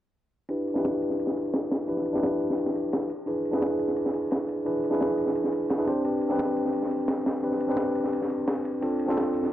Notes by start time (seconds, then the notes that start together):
0.49 D4 E4 G4 B4, ride
0.68 ride
0.74 D4 E4 G4 B4, snare
0.85 snare, ride
1.02 ride
1.10 snare
1.19 ride
1.27 snare
1.37 ride
1.45 ride
1.54 snare, ride
1.71 snare, ride
1.88 D4 E4 G4 B4, ride
1.97 snare
2.06 ride
2.13 D4 E4 G4 B4, snare
2.23 snare, ride
2.40 ride
2.50 snare
2.57 ride
2.66 snare
2.76 ride
2.92 snare, ride
3.01 ride
3.10 ride
3.26 D4 E4 G#4 B4, ride
3.45 ride
3.52 D4 E4 G#4 B4, snare
3.62 snare, ride
3.79 ride
3.88 snare
3.96 ride
4.06 snare
4.13 ride
4.22 ride
4.31 snare, ride
4.48 ride
4.65 D4 E4 G#4 B4, ride
4.84 ride
4.90 D4 E4 G#4 B4, snare
5.00 snare, ride
5.18 ride
5.27 snare
5.35 ride
5.44 snare
5.52 ride
5.69 snare, ride
5.78 D4 E4 G#4 B4, ride
5.86 C4 D4 G4 C5, ride
6.04 C4 D4 G4 B4, ride
6.21 ride
6.29 C4 D4 G4 B4, snare
6.39 snare, ride
6.56 ride
6.65 snare
6.72 ride
6.83 snare
6.91 ride
7.00 ride
7.08 snare, ride
7.26 snare, ride
7.42 C4 D4 G4 B4, ride
7.52 snare
7.60 ride
7.68 C4 D4 G4 B4, snare
7.77 snare, ride
7.95 ride
8.04 snare
8.13 ride
8.22 snare
8.30 ride
8.48 snare, ride
8.55 ride
8.65 ride
8.81 C4 D4 F4 A4, ride
8.99 ride
9.07 C4 D4 F4 A4, snare
9.17 snare, ride
9.34 ride
9.43 snare